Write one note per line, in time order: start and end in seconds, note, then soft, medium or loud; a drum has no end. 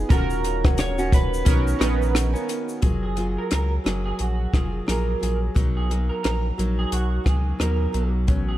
0.00 0.12 B3 medium
0.00 0.11 D#4 medium
0.00 0.13 D#4 medium
0.00 0.10 F4 medium
0.00 0.13 G#4 medium
0.09 1.43 D#1 loud
0.09 0.64 D#3 medium
0.09 0.65 A#3 medium
0.09 1.24 C#4 medium
0.09 0.64 C#4 medium
0.09 1.25 F4 medium
0.09 1.25 F#4 medium
0.09 0.63 F#4 medium
0.09 0.19 A4 medium
0.09 0.75 A#4 loud
0.09 kick loud
0.09 closed hi-hat medium
0.09 shaker medium
0.18 1.29 A#4 medium
0.30 shaker medium
0.44 closed hi-hat medium
0.44 shaker medium
0.64 1.00 A#3 soft
0.64 0.98 C#4 medium
0.64 0.97 F#4 medium
0.64 kick loud
0.64 cross-stick loud
0.64 shaker soft
0.78 1.14 C#5 loud
0.78 cross-stick medium
0.78 closed hi-hat medium
0.78 shaker medium
0.98 1.45 D#3 medium
0.98 1.46 C#4 medium
0.98 1.46 F#4 medium
0.98 shaker medium
1.12 2.12 B4 medium
1.12 kick medium
1.12 closed hi-hat medium
1.12 shaker medium
1.34 shaker medium
1.45 1.74 B1 loud
1.45 1.80 B2 medium
1.45 1.78 D#3 medium
1.45 1.75 C#4 medium
1.45 1.80 C#4 medium
1.45 1.76 D#4 medium
1.45 1.76 F#4 medium
1.45 1.76 A#4 medium
1.45 kick medium
1.45 closed hi-hat medium
1.45 shaker medium
1.68 shaker medium
1.79 2.35 A#1 medium
1.79 2.35 D#3 medium
1.79 2.69 B3 medium
1.79 2.67 C#4 medium
1.79 2.32 C#4 medium
1.79 2.68 D#4 medium
1.79 2.68 F#4 medium
1.79 cross-stick medium
1.79 closed hi-hat medium
1.79 shaker medium
2.02 shaker soft
2.15 cross-stick medium
2.15 closed hi-hat medium
2.15 shaker medium
2.33 2.81 D#3 medium
2.33 2.81 A#3 medium
2.33 2.82 C#4 medium
2.33 shaker soft
2.49 closed hi-hat medium
2.49 shaker medium
2.69 shaker medium
2.82 3.38 F#1 medium
2.82 3.14 F#3 medium
2.82 3.16 A#3 medium
2.82 3.16 F4 medium
2.82 3.17 G#4 medium
2.82 kick loud
2.82 closed hi-hat medium
3.03 3.16 G#4 medium
3.15 3.84 F#3 medium
3.15 3.85 A#3 medium
3.15 3.85 F4 medium
3.15 3.86 G#4 medium
3.15 closed hi-hat soft
3.38 3.51 A#4 medium
3.51 3.79 C#2 medium
3.51 3.71 A#4 medium
3.51 cross-stick medium
3.51 closed hi-hat medium
3.84 4.13 F#1 medium
3.84 4.52 F#3 medium
3.84 4.54 A#3 medium
3.84 4.55 G#4 medium
3.84 cross-stick medium
3.84 closed hi-hat soft
4.06 4.21 G#4 medium
4.19 4.47 A#1 medium
4.19 4.52 F#4 medium
4.19 closed hi-hat soft
4.53 4.81 F1 medium
4.53 4.85 F#3 medium
4.53 4.87 A#3 medium
4.53 4.88 F4 medium
4.53 4.74 G#4 medium
4.53 4.89 G#4 medium
4.53 kick medium
4.53 cross-stick medium
4.53 closed hi-hat soft
4.86 5.15 A#1 medium
4.86 5.18 F#3 medium
4.86 5.19 A#3 medium
4.86 5.21 F4 medium
4.86 5.22 G#4 medium
4.86 5.39 A#4 medium
4.86 cross-stick medium
4.86 closed hi-hat medium
5.20 5.49 A#1 medium
5.20 5.54 F#3 medium
5.20 5.55 A#3 medium
5.20 5.56 F4 medium
5.20 5.56 G#4 medium
5.20 closed hi-hat soft
5.55 6.11 B1 loud
5.55 5.89 B2 medium
5.55 5.88 F#3 medium
5.55 5.89 A#3 medium
5.55 5.90 D#4 medium
5.55 kick loud
5.55 closed hi-hat medium
5.77 5.89 G#4 medium
5.90 6.57 F#3 medium
5.90 6.58 A#3 medium
5.90 6.59 D#4 medium
5.90 closed hi-hat soft
6.09 6.22 A#4 medium
6.23 6.52 A#1 medium
6.23 6.43 A#4 medium
6.23 cross-stick medium
6.23 closed hi-hat medium
6.58 6.85 A#1 medium
6.58 7.26 F#3 medium
6.58 7.26 A#3 medium
6.58 7.27 D#4 medium
6.58 closed hi-hat soft
6.79 6.91 G#4 medium
6.92 7.19 B1 medium
6.92 7.25 F#4 medium
6.92 closed hi-hat medium
7.24 7.53 C#2 loud
7.24 7.58 B2 medium
7.24 7.59 F#3 medium
7.24 7.60 A#3 medium
7.24 7.45 G#4 medium
7.24 kick medium
7.24 cross-stick medium
7.24 closed hi-hat soft
7.28 7.61 D#4 medium
7.59 7.87 D#2 medium
7.59 7.91 B2 medium
7.59 7.93 F#3 medium
7.59 7.94 A#3 medium
7.59 7.95 D#4 medium
7.59 8.11 A#4 medium
7.59 cross-stick medium
7.59 closed hi-hat medium
7.92 8.30 B1 medium
7.92 8.27 B2 medium
7.92 8.27 F#3 medium
7.92 8.28 A#3 medium
7.92 8.29 D#4 medium
7.92 closed hi-hat soft
8.27 8.58 A1 loud
8.27 8.58 A2 medium
8.27 8.58 F#3 medium
8.27 8.58 B3 medium
8.27 8.58 C#4 medium
8.27 kick medium
8.27 closed hi-hat medium
8.49 8.58 G#4 medium